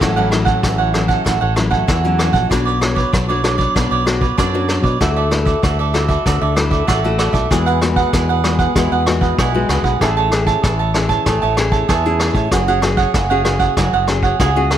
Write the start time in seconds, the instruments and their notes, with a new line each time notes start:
0.00 fingered electric bass A1, nylon-string guitar A2 F#3 C#4 E4, cavaquinho F#4 A4 C#5 F#5, kick, cross-stick, closed hi-hat
0.16 nylon-string guitar F#3 C#4 E4, cavaquinho A4 C#5 F#5
0.31 nylon-string guitar F#3 C#4 E4, muted cavaquinho stroke, cross-stick, closed hi-hat
0.45 cavaquinho A4 C#5 F#5, kick, closed hi-hat
0.63 fingered electric bass A1, nylon-string guitar E3, cavaquinho F#4 A4 C#5 F#5, kick, cross-stick, closed hi-hat
0.78 cavaquinho A4 C#5 F#5
0.94 nylon-string guitar F#3 C#4 E4, cross-stick, closed hi-hat
1.08 cavaquinho A4 C#5 F#5, kick, closed hi-hat
1.25 fingered electric bass A1, nylon-string guitar A2, cavaquinho F#4 A4 C#5 F#5, kick, cross-stick, closed hi-hat
1.41 fingered electric bass A1, cavaquinho A4 C#5 F#5
1.55 nylon-string guitar F#3 C#4 E4, muted cavaquinho stroke, cross-stick, closed hi-hat
1.70 cavaquinho A4 C#5 F#5, kick
1.88 fingered electric bass E2, nylon-string guitar E3, cavaquinho F#4 A4 C#5 F#5, kick, cross-stick, closed hi-hat
2.04 nylon-string guitar F#3 C#4 E4, closed hi-hat
2.18 cavaquinho F#4 A4 C#5 F#5, cross-stick, closed hi-hat
2.32 fingered electric bass A#1, cavaquinho A4 C#5 F#5, kick, closed hi-hat
2.50 fingered electric bass B1, nylon-string guitar B3 D4 F#4 C#5, cavaquinho D4 B4 C#5 D5, kick, cross-stick, closed hi-hat
2.65 cavaquinho B4 C#5 D5, closed hi-hat
2.81 nylon-string guitar D4 F#4 C#5, muted cavaquinho stroke, cross-stick, closed hi-hat
2.95 cavaquinho B4 C#5 D5, kick
3.12 fingered electric bass B1, nylon-string guitar F#3, cavaquinho D4 B4 C#5 D5, kick, cross-stick, closed hi-hat
3.28 nylon-string guitar D4 F#4 C#5, cavaquinho B4 C#5 D5
3.44 nylon-string guitar D4 F#4 C#5, cross-stick, closed hi-hat
3.58 cavaquinho B4 C#5 D5, kick, closed hi-hat
3.75 fingered electric bass B1, nylon-string guitar B3, cavaquinho D4 B4 C#5 D5, kick, cross-stick, closed hi-hat
3.91 fingered electric bass B1, cavaquinho B4 C#5 D5
4.06 nylon-string guitar D4 F#4 C#5, muted cavaquinho stroke, cross-stick, closed hi-hat
4.21 cavaquinho B4 C#5 D5, kick
4.37 fingered electric bass F#2, nylon-string guitar F#3 D4 F#4 C#5, cavaquinho D4 B4 C#5 D5, kick, cross-stick, closed hi-hat
4.54 nylon-string guitar D4 F#4 C#5
4.68 cavaquinho D4 B4 C#5 D5, cross-stick, closed hi-hat
4.82 fingered electric bass B2, cavaquinho B4 C#5 D5, kick
5.00 fingered electric bass D2, nylon-string guitar D3 A3 E4 F#4, cavaquinho F#4 A4 D5 E5, kick, cross-stick, closed hi-hat
5.16 cavaquinho A4 D5 E5
5.31 nylon-string guitar A3 E4 F#4, muted cavaquinho stroke, cross-stick, closed hi-hat
5.45 cavaquinho A4 D5 E5, kick, closed hi-hat
5.62 fingered electric bass D2, nylon-string guitar A3, cavaquinho F#4 A4 D5 E5, kick, cross-stick, closed hi-hat
5.79 cavaquinho A4 D5 E5
5.94 nylon-string guitar A3 E4 F#4, cross-stick, closed hi-hat
6.08 cavaquinho A4 D5 E5, kick, closed hi-hat
6.26 fingered electric bass D2, nylon-string guitar D3, cavaquinho F#4 A4 D5 E5, kick, cross-stick, closed hi-hat
6.41 fingered electric bass D2, cavaquinho A4 D5 E5
6.56 nylon-string guitar A3 E4 F#4, muted cavaquinho stroke, cross-stick, closed hi-hat
6.71 cavaquinho A4 D5 E5, kick
6.87 fingered electric bass A1, nylon-string guitar A3, cavaquinho F#4 A4 D5 E5, kick, cross-stick, closed hi-hat
7.04 nylon-string guitar A3 E4 F#4, closed hi-hat
7.18 cavaquinho F#4 A4 D5 E5, cross-stick, closed hi-hat
7.33 fingered electric bass B1, cavaquinho A4 D5 E5, kick, closed hi-hat
7.50 fingered electric bass E2, nylon-string guitar E3 G#3 B3 F#4, cavaquinho E4 G#4 B4 F#5, kick, cross-stick, closed hi-hat
7.66 cavaquinho G#4 B4 F#5, closed hi-hat
7.81 nylon-string guitar G#3 B3 F#4, muted cavaquinho stroke, cross-stick, closed hi-hat
7.96 cavaquinho G#4 B4 F#5, kick
8.13 fingered electric bass E2, nylon-string guitar B2, cavaquinho E4 G#4 B4 F#5, kick, cross-stick, closed hi-hat
8.29 cavaquinho G#4 B4 F#5
8.44 nylon-string guitar G#3 B3 F#4, cross-stick, closed hi-hat
8.59 cavaquinho G#4 B4 F#5, kick, closed hi-hat
8.75 fingered electric bass E2, nylon-string guitar E3 G#3 B3 F#4, cavaquinho E4 G#4 B4 F#5, kick, cross-stick, closed hi-hat
8.92 fingered electric bass E2, cavaquinho G#4 B4 F#5
9.06 nylon-string guitar G#3 B3 F#4, muted cavaquinho stroke, cross-stick, closed hi-hat
9.21 cavaquinho G#4 B4 F#5, kick
9.38 fingered electric bass B1, nylon-string guitar B2, cavaquinho E4 G#4 B4 F#5, kick, cross-stick, closed hi-hat
9.54 nylon-string guitar G#3 B3 F#4
9.69 fingered electric bass C#2, cavaquinho E4 G#4 B4 F#5, cross-stick, closed hi-hat
9.82 fingered electric bass B1, cavaquinho G#4 B4 F#5, kick
10.01 fingered electric bass A1, nylon-string guitar A3 C#4 E4 G#4, cavaquinho G#4 C#5 E5 A5, kick, cross-stick, closed hi-hat
10.17 cavaquinho C#5 E5 A5
10.32 nylon-string guitar C#4 E4 G#4, muted cavaquinho stroke, cross-stick, closed hi-hat
10.47 cavaquinho C#5 E5 A5, kick, closed hi-hat
10.63 fingered electric bass A1, nylon-string guitar E3, cavaquinho G#4 C#5 E5 A5, kick, cross-stick, closed hi-hat
10.79 cavaquinho C#5 E5 A5
10.94 nylon-string guitar C#4 E4 G#4, cross-stick, closed hi-hat
11.09 cavaquinho C#5 E5 A5, kick, closed hi-hat
11.26 fingered electric bass A1, nylon-string guitar A3, cavaquinho G#4 C#5 E5 A5, kick, cross-stick, closed hi-hat
11.42 fingered electric bass A1, cavaquinho C#5 E5 A5
11.57 nylon-string guitar C#4 E4 G#4, muted cavaquinho stroke, cross-stick, closed hi-hat
11.72 cavaquinho C#5 E5 A5, kick
11.89 fingered electric bass E2, nylon-string guitar E3, cavaquinho G#4 C#5 E5 A5, kick, cross-stick, closed hi-hat
12.05 nylon-string guitar C#4 E4 G#4, closed hi-hat
12.20 cavaquinho G#4 C#5 E5 A5, cross-stick, closed hi-hat
12.33 fingered electric bass A2, cavaquinho C#5 E5 A5, kick, closed hi-hat
12.51 fingered electric bass F#1, nylon-string guitar F#3 C#4 F#4 G#4, cavaquinho F#4 G#4 C#5 F#5, kick, cross-stick, closed hi-hat
12.68 nylon-string guitar C#4 F#4 G#4, cavaquinho G#4 C#5 F#5, closed hi-hat
12.82 nylon-string guitar C#4 F#4 G#4, muted cavaquinho stroke, cross-stick, closed hi-hat
12.97 cavaquinho G#4 C#5 F#5, kick
13.14 fingered electric bass F#1, nylon-string guitar C#3, cavaquinho F#4 G#4 C#5 F#5, kick, cross-stick, closed hi-hat
13.30 nylon-string guitar C#4 F#4 G#4, cavaquinho G#4 C#5 F#5
13.45 nylon-string guitar C#4 F#4 G#4, cross-stick, closed hi-hat
13.59 cavaquinho G#4 C#5 F#5, kick, closed hi-hat
13.77 fingered electric bass F#1, nylon-string guitar F#3, cavaquinho F#4 G#4 C#5 F#5, kick, cross-stick, closed hi-hat
13.93 fingered electric bass F#1, cavaquinho G#4 C#5 F#5
14.07 nylon-string guitar C#4 F#4 G#4, muted cavaquinho stroke, cross-stick, closed hi-hat
14.23 cavaquinho G#4 C#5 F#5, kick
14.40 fingered electric bass C#2, nylon-string guitar C#3 C#4 F#4 G#4, cavaquinho F#4 G#4 C#5 F#5, kick, cross-stick, closed hi-hat
14.56 nylon-string guitar C#4 F#4 G#4
14.70 cavaquinho F#4 G#4 C#5 F#5, cross-stick, closed hi-hat